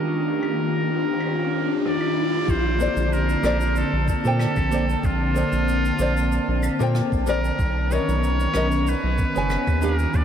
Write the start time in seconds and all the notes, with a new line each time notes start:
Already playing: D#3 D4 F4 G4 A#4 F5, riser
0.43 claves
1.21 claves
1.86 D5, cross-stick
2.01 claves
2.48 A#1 D3 A#3 C4 C5 A5, kick, shaker
2.79 A#3 A4 C5 D5, shaker
2.96 A#1, shaker
3.13 A#4, shaker
3.29 shaker
3.43 A#1 A#3 A4 C5 D5, cross-stick, claves, shaker
3.61 shaker
3.76 A4, shaker
3.93 A#1
4.08 A4, kick, shaker
4.24 A#2 A#3 A4 C5 G5, shaker
4.39 cross-stick, claves, shaker
4.56 A#1, kick, claves, shaker
4.71 A#3 A4 C5 D5, shaker
4.89 shaker
5.03 A#1 F4, kick, shaker
5.34 A#3 A4 C5 D5, shaker
5.52 A#1, shaker
5.68 shaker
5.85 shaker
5.99 A#1 A#3 A4 C5 D5, shaker
6.17 shaker
6.32 shaker
6.48 A#1
6.63 claves, shaker
6.79 A#2 A#3 A4 C5 G5, shaker
6.95 cross-stick, shaker
7.12 A#1, kick, shaker
7.26 A#3 A4 A#4 C5 D5, shaker
7.45 shaker
7.58 B1 D#3 B3 C#4 A#5, kick, shaker
7.90 B3 A#4 C#5 D#5, shaker
8.08 B1, shaker
8.24 shaker
8.40 shaker
8.54 B1 B3 A#4 C#5 D#5, cross-stick, claves, shaker
8.72 shaker
8.87 B4, shaker
9.04 B1
9.18 kick, shaker
9.35 F#1 B3 B4 C#5 G#5, shaker
9.50 cross-stick, claves, shaker
9.67 D#2, kick, claves, shaker
9.81 D#3 G3 D4 F4 G4 A#4 F5, shaker
9.99 shaker
10.14 D#2 D5, kick, shaker